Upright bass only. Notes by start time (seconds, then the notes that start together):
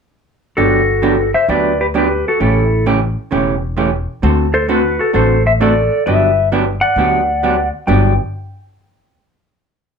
0.57 G1
1.49 D2
2.41 A1
3.32 E1
4.23 D2
5.15 A1
6.07 G1
6.96 D2
7.88 G1